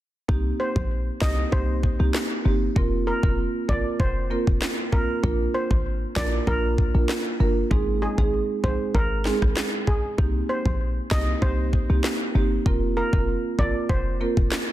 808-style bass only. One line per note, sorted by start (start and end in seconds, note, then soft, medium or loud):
0.29 0.52 C2 loud
0.76 1.10 A#1 medium
1.22 1.45 C2 loud
1.52 1.88 C2 loud
2.00 2.11 C2 medium
2.45 2.69 G1 medium
2.76 3.12 F1 loud
3.23 3.47 F1 medium
3.69 3.81 G1 medium
4.00 4.36 F1 loud
4.47 4.58 F1 medium
5.24 5.47 A#1 loud
5.71 6.05 G#1 medium
6.16 6.40 A#1 medium
6.47 6.83 A#1 loud
6.95 7.06 A#1 medium
7.40 7.64 G1 medium
7.71 8.07 G#1 loud
8.18 8.42 G#1 medium
8.64 8.76 A#1 medium
8.95 9.31 G#1 loud
9.42 9.53 G#1 medium
10.18 10.42 C2 loud
10.66 11.00 A#1 medium
11.11 11.35 C2 loud
11.42 11.78 C2 loud
11.90 12.01 C2 medium
12.35 12.58 G1 medium
12.66 13.02 F1 loud
13.13 13.37 F1 loud
13.59 13.71 G1 medium
13.89 14.25 F1 loud
14.37 14.48 F1 loud